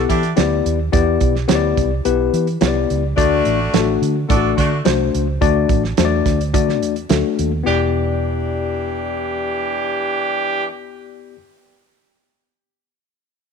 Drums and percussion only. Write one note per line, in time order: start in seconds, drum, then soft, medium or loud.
0.10 kick medium
0.10 closed hi-hat medium
0.23 closed hi-hat medium
0.37 snare medium
0.37 closed hi-hat medium
0.66 closed hi-hat medium
0.93 kick loud
0.93 closed hi-hat medium
1.20 kick medium
1.20 closed hi-hat medium
1.36 snare soft
1.49 snare medium
1.49 closed hi-hat loud
1.77 kick medium
1.77 closed hi-hat medium
2.05 closed hi-hat medium
2.34 closed hi-hat medium
2.47 closed hi-hat soft
2.61 snare loud
2.61 closed hi-hat medium
2.90 closed hi-hat medium
3.18 kick loud
3.18 closed hi-hat medium
3.45 closed hi-hat medium
3.74 snare medium
3.74 closed hi-hat loud
4.03 closed hi-hat medium
4.30 kick loud
4.30 closed hi-hat medium
4.58 kick medium
4.58 closed hi-hat medium
4.85 snare loud
4.85 closed hi-hat medium
5.15 closed hi-hat medium
5.42 kick loud
5.42 closed hi-hat medium
5.69 kick loud
5.69 closed hi-hat medium
5.84 snare soft
5.97 snare loud
5.97 closed hi-hat medium
6.26 kick medium
6.26 snare soft
6.26 closed hi-hat medium
6.41 closed hi-hat medium
6.54 kick medium
6.54 closed hi-hat medium
6.69 snare soft
6.83 closed hi-hat medium
6.96 closed hi-hat soft
7.09 snare medium
7.09 closed hi-hat medium
7.39 closed hi-hat medium